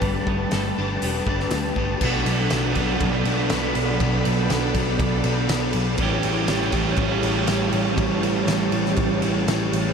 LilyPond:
<<
  \new Staff \with { instrumentName = "String machine" } { \time 4/4 \key b \minor \tempo 4 = 121 <g' b' a''>1 | <a' d'' b''>1~ | <a' d'' b''>1 | <g' cis'' a''>1~ |
<g' cis'' a''>1 | }
  \new Staff \with { instrumentName = "Overdriven electric guitar" } { \time 4/4 \key b \minor <g a d' g'>4 a8 d'8 g'8 d'8 a8 d'8 | <b, fis b d'>8 <fis b d'>8 <b, fis b d'>8 <fis b d'>4 <fis b d'>8 <b, fis b d'>4 | <b, fis b d'>8 <fis b d'>8 <b, fis b d'>8 <fis b d'>4 <fis b d'>8 <b, fis b d'>4 | <a, e g cis' e'>8 <g cis' e'>8 <e g cis' e'>8 <g cis' e'>4 <g cis' e'>8 <e g cis' e'>4 |
<a, e g cis' e'>8 <g cis' e'>8 <e g cis' e'>8 <g cis' e'>4 <g cis' e'>8 <e g cis' e'>4 | }
  \new Staff \with { instrumentName = "Overdriven electric guitar" } { \time 4/4 \key b \minor <g b d'>8 b8 a'8 d'8 b8 d'8 g8 b8 | <b, fis b d' fis'>1~ | <b, fis b d' fis'>1 | <a, e g cis' g'>1~ |
<a, e g cis' g'>1 | }
  \new Staff \with { instrumentName = "Picked electric bass" } { \clef bass \time 4/4 \key b \minor g,,8 g,,8 g,,8 g,,8 e,,8 g,,8 d,8 g,,8 | b,,8 b,,8 b,,8 b,,8 b,,8 b,,8 b,,8 b,,8 | b,,8 b,,8 b,,8 b,,8 b,,8 b,,8 b,,8 b,,8 | a,,8 a,,8 a,,8 a,,8 a,,8 a,,8 a,,8 a,,8 |
a,,8 a,,8 a,,8 a,,8 a,,8 a,,8 a,,8 a,,8 | }
  \new DrumStaff \with { instrumentName = "Drums" } \drummode { \time 4/4 <hho bd>8 bd8 <hho sn>4 hho8 bd16 sn16 <hho sn>8 bd8 | <cymc bd>8 cymr8 <cymr sn>8 <bd cymr>8 <bd cymr>8 cymr8 <cymr sn>8 cymr8 | <bd cymr>8 cymr8 <cymr sn>8 <bd cymr>8 <bd cymr>8 cymr8 <cymr sn>8 cymr8 | <bd cymr>8 cymr8 <cymr sn>16 sn16 <bd cymr>8 <bd cymr>8 cymr8 <cymr sn>8 cymr8 |
<bd cymr>8 cymr8 <cymr sn>8 cymr16 sn16 <bd cymr>8 cymr8 <cymr sn>8 cymr8 | }
>>